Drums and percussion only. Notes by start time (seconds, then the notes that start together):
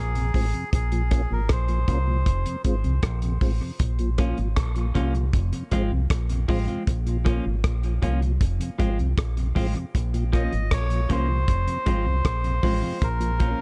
0.15 closed hi-hat
0.34 kick, open hi-hat
0.54 closed hi-hat
0.73 kick, closed hi-hat
0.92 closed hi-hat
1.11 kick, cross-stick, closed hi-hat
1.49 kick, cross-stick, closed hi-hat
1.68 closed hi-hat
1.88 kick, closed hi-hat
2.26 kick, closed hi-hat
2.46 closed hi-hat
2.64 kick, closed hi-hat
2.84 closed hi-hat
3.03 kick, cross-stick, closed hi-hat
3.22 closed hi-hat
3.41 kick, open hi-hat
3.79 kick, closed hi-hat
3.99 closed hi-hat
4.18 kick, cross-stick, closed hi-hat
4.38 closed hi-hat
4.56 kick, cross-stick, closed hi-hat
4.76 closed hi-hat
4.95 kick, closed hi-hat
5.15 closed hi-hat
5.33 kick, closed hi-hat
5.53 closed hi-hat
5.71 kick, closed hi-hat
6.10 kick, cross-stick, closed hi-hat
6.29 closed hi-hat
6.49 kick, open hi-hat
6.68 closed hi-hat
6.87 kick, closed hi-hat
7.07 closed hi-hat
7.26 kick, cross-stick, closed hi-hat
7.64 kick, cross-stick, closed hi-hat
7.83 closed hi-hat
8.03 kick, closed hi-hat
8.22 closed hi-hat
8.41 kick, closed hi-hat
8.61 closed hi-hat
8.80 kick, closed hi-hat
8.99 closed hi-hat
9.18 kick, cross-stick, closed hi-hat
9.37 closed hi-hat
9.56 kick, open hi-hat
9.76 closed hi-hat
9.95 kick, closed hi-hat
10.14 closed hi-hat
10.33 kick, cross-stick, closed hi-hat
10.52 closed hi-hat
10.71 kick, cross-stick, closed hi-hat
10.90 closed hi-hat
11.10 kick, closed hi-hat
11.48 kick, closed hi-hat
11.68 closed hi-hat
11.86 kick, closed hi-hat
12.25 kick, cross-stick, closed hi-hat
12.44 closed hi-hat
12.63 kick, open hi-hat
13.02 kick, closed hi-hat
13.21 closed hi-hat
13.40 kick, closed hi-hat